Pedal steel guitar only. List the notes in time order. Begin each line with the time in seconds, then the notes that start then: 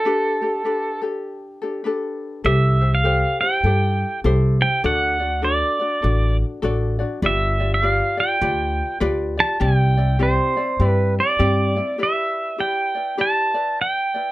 Already playing: A4
2.46 E5
2.95 F5
3.41 G5
4.62 G5
4.86 F#5
5.44 D5
7.26 E5
7.74 E5
7.85 F5
8.20 G5
9.40 A5
9.62 G5
10.23 C5
10.85 B4
11.20 D5
12.03 E5
12.60 G5
13.21 A5
13.81 G5